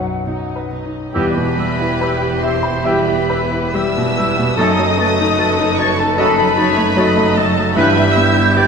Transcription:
0.00 1.12 B1 soft
0.00 0.15 F#2 soft
0.00 0.24 F#3 soft
0.00 1.17 F#3 soft
0.00 0.24 D#4 soft
0.00 0.27 D#4 soft
0.00 0.27 B4 soft
0.00 0.56 B4 soft
0.00 0.71 F#5 soft
0.25 0.34 B1 soft
0.25 0.34 B2 soft
0.25 0.69 F#3 soft
0.25 0.68 D#4 soft
0.25 0.74 D#4 soft
0.25 1.15 D#5 medium
0.56 1.03 B4 soft
0.70 0.78 B1 soft
0.70 0.79 B2 soft
0.70 1.14 F#3 soft
0.70 1.14 D#4 soft
0.85 1.15 D#4 soft
1.13 4.53 E1 medium
1.13 4.54 E2 medium
1.13 1.47 B2 medium
1.13 1.34 G3 medium
1.13 1.47 G3 medium
1.13 1.47 B3 medium
1.13 1.47 E4 medium
1.13 4.53 G4 medium
1.13 1.47 G4 medium
1.13 1.30 G4 medium
1.13 2.44 B4 medium
1.13 2.39 B5 medium
1.13 1.25 E6 medium
1.35 1.71 B2 soft
1.35 1.57 B3 medium
1.57 1.93 G3 soft
1.57 1.79 E4 medium
1.57 1.73 G4 soft
1.57 1.69 E6 medium
1.79 2.01 B3 medium
1.79 2.14 E4 medium
2.01 2.22 G3 medium
2.01 2.17 G4 medium
2.01 2.35 B4 medium
2.01 2.12 E6 medium
2.22 2.43 B3 medium
2.22 2.55 G4 medium
2.42 2.64 E4 medium
2.42 2.58 G4 soft
2.42 2.87 C5 medium
2.42 2.77 E5 medium
2.42 2.85 C6 medium
2.42 2.55 E6 medium
2.63 2.85 B3 medium
2.63 2.97 B5 medium
2.83 3.18 B2 medium
2.83 3.18 G3 medium
2.83 3.05 G3 medium
2.83 3.18 B3 medium
2.83 3.17 E4 medium
2.83 2.99 G4 medium
2.83 3.70 G4 medium
2.83 3.18 G4 medium
2.83 3.77 B4 medium
2.83 3.20 E5 medium
2.83 3.75 B5 medium
2.83 2.95 E6 medium
3.07 3.29 B3 medium
3.07 3.44 G4 medium
3.28 3.52 E4 medium
3.28 3.44 G4 medium
3.28 3.66 B4 medium
3.28 3.40 E6 medium
3.50 3.74 B3 medium
3.50 3.88 E4 medium
3.73 3.96 G3 medium
3.73 4.09 G3 medium
3.73 3.90 G4 medium
3.73 4.58 B4 medium
3.73 4.57 E5 medium
3.73 4.55 E6 medium
3.73 3.84 E6 medium
3.95 4.30 B2 medium
3.95 4.17 B3 medium
4.17 4.51 G3 medium
4.17 4.37 E4 medium
4.17 4.33 G4 medium
4.17 4.27 E6 medium
4.37 4.59 B2 medium
4.37 4.58 B3 medium
4.56 7.76 F#1 medium
4.56 4.86 F#2 medium
4.56 7.76 F#2 medium
4.56 7.73 F#2 medium
4.56 4.87 F#3 medium
4.56 4.86 A3 medium
4.56 4.77 A3 medium
4.56 4.86 D#4 medium
4.56 4.73 F#4 medium
4.56 4.87 A4 medium
4.56 7.73 A4 medium
4.56 4.98 D#5 medium
4.56 5.80 D#5 loud
4.56 5.79 D#6 loud
4.56 4.67 A6 medium
4.77 5.11 F#3 medium
4.77 4.98 D#4 medium
4.98 5.19 A3 medium
4.98 5.32 A3 medium
4.98 5.14 F#4 medium
4.98 6.19 B4 medium
4.98 5.08 A6 medium
5.19 5.39 D#4 medium
5.19 5.52 D#4 medium
5.37 5.58 A3 medium
5.37 5.54 F#4 medium
5.37 5.71 A4 medium
5.37 5.48 A6 medium
5.59 5.79 D#4 medium
5.59 5.91 D#4 medium
5.78 5.99 A3 medium
5.78 5.94 F#4 medium
5.78 5.98 C#5 medium
5.78 6.11 D#5 medium
5.78 5.98 C#6 loud
5.78 5.89 A6 medium
5.98 6.18 D#4 medium
5.98 6.18 A4 medium
5.98 6.31 A5 medium
5.98 6.19 A5 medium
6.18 6.47 F#2 medium
6.18 6.47 F#3 medium
6.18 6.36 A3 medium
6.18 6.47 A3 medium
6.18 6.47 D#4 medium
6.18 6.35 F#4 medium
6.18 6.47 A4 medium
6.18 6.58 A4 medium
6.18 7.39 B4 loud
6.18 6.50 D#5 medium
6.18 7.34 B5 loud
6.18 6.28 A6 medium
6.37 6.58 D#4 medium
6.37 6.70 A4 medium
6.57 6.78 A3 medium
6.57 6.89 D#4 medium
6.57 6.73 F#4 medium
6.57 6.96 C#5 medium
6.57 6.67 A6 medium
6.76 7.09 A3 medium
6.76 6.97 D#4 medium
6.96 7.29 F#3 medium
6.96 7.17 A3 medium
6.96 7.14 F#4 medium
6.96 7.77 D#5 medium
6.96 7.07 A6 medium
7.16 7.49 A3 medium
7.16 7.36 D#4 medium
7.36 7.69 F#3 medium
7.36 7.56 A3 medium
7.36 7.53 F#4 medium
7.36 7.76 A4 medium
7.36 7.76 A5 loud
7.36 7.46 A6 medium
7.56 7.77 A3 medium
7.56 7.76 D#4 medium
7.75 8.67 G1 medium
7.75 8.05 G2 medium
7.75 8.67 G2 medium
7.75 8.05 E3 medium
7.75 7.95 G3 medium
7.75 8.05 G3 medium
7.75 8.05 E4 medium
7.75 8.67 E4 medium
7.75 8.67 G4 medium
7.75 8.05 B4 medium
7.75 8.18 B4 loud
7.75 8.55 E5 loud
7.75 8.16 B5 loud
7.75 8.67 G6 medium
7.95 8.29 G3 medium
7.95 8.16 B3 medium
8.14 8.48 B3 medium
8.14 8.37 E4 medium
8.14 8.59 E5 medium
8.14 8.56 E6 medium
8.35 8.56 B3 medium
8.35 8.67 E4 medium
8.56 8.67 G3 medium
8.56 8.67 G4 medium
8.56 8.67 B4 medium
8.56 8.67 D5 medium
8.56 8.67 D6 loud

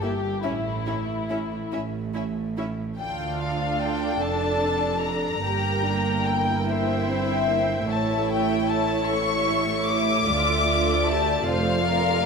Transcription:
0.00 0.30 G1 soft
0.00 0.30 G2 soft
0.00 0.10 A#3 soft
0.00 0.10 E4 soft
0.00 0.45 G4 medium
0.00 0.10 E5 soft
0.44 1.58 A1 soft
0.44 1.58 A2 soft
0.44 0.52 C#4 soft
0.44 0.52 E4 soft
0.44 1.71 E4 soft
0.44 0.52 E5 soft
0.87 0.95 C#4 soft
0.87 0.95 E4 soft
0.87 0.95 E5 soft
1.30 1.38 C#4 soft
1.30 1.38 E4 soft
1.30 1.38 E5 soft
1.72 2.84 A1 soft
1.72 2.84 A2 soft
1.72 1.80 C#4 soft
1.72 1.81 E4 soft
1.72 1.81 E5 soft
2.14 2.22 C#4 soft
2.14 2.22 E4 soft
2.14 2.24 E5 soft
2.57 2.66 C#4 soft
2.57 2.65 E4 soft
2.57 2.66 E5 soft
2.98 4.19 D2 soft
2.98 5.41 D4 soft
2.98 4.18 F4 soft
2.98 5.42 A4 soft
2.98 4.19 F5 soft
2.98 3.37 G5 soft
3.41 3.82 F5 soft
3.80 4.22 G5 medium
4.21 5.43 F1 soft
4.21 5.43 F2 soft
4.21 5.45 A4 soft
4.21 5.46 D5 soft
4.21 5.03 A5 medium
5.03 6.28 A#5 medium
5.44 7.87 G1 soft
5.44 7.88 G2 soft
5.44 6.66 A#3 soft
5.44 5.86 G4 soft
5.44 6.66 A#4 soft
5.44 6.67 G5 soft
5.86 6.27 D4 soft
6.27 7.89 E4 soft
6.27 6.68 G5 medium
6.68 7.09 A#3 soft
6.68 7.91 C5 soft
6.68 7.91 E5 medium
6.68 7.88 G5 soft
7.09 7.50 C4 soft
7.50 7.91 A#3 soft
7.90 10.25 A1 soft
7.90 10.25 A2 medium
7.90 10.24 A3 soft
7.90 10.24 E4 soft
7.90 10.24 C#5 soft
7.90 9.08 E5 soft
7.90 8.31 A5 medium
8.31 8.70 G5 medium
8.69 9.10 A5 medium
9.09 11.44 E5 soft
9.09 9.88 C#6 medium
9.88 11.08 D6 medium
10.28 11.48 D2 medium
10.28 11.49 D2 medium
10.28 11.46 A3 medium
10.28 10.67 F4 medium
10.28 11.46 D5 soft
10.68 11.07 F4 medium
11.08 11.48 G4 medium
11.08 11.48 A5 medium
11.47 12.26 F1 medium
11.47 12.26 F2 medium
11.47 12.26 A3 medium
11.47 12.26 F4 medium
11.47 11.88 C5 medium
11.47 12.26 D5 soft
11.47 12.26 F5 medium
11.87 12.26 A#4 medium

